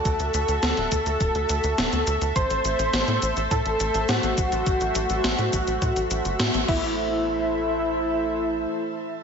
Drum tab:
CC |----------------|----------------|--------------x-|----------------|
HH |xxxxxxxxxxxxxxxx|xxxxxxxxxxxxxxxx|xxxxxxxxxxxxxx--|----------------|
SH |xxxxx-xxx-xxxxxx|xxxxx-xxx-xxxxxx|xxxxxxxxxxxxxx--|----------------|
SD |----oo------o---|----o-------o---|----oo------o---|----------------|
BD |o-----o-o-------|o-------o-----o-|o-----o-o-----o-|----------------|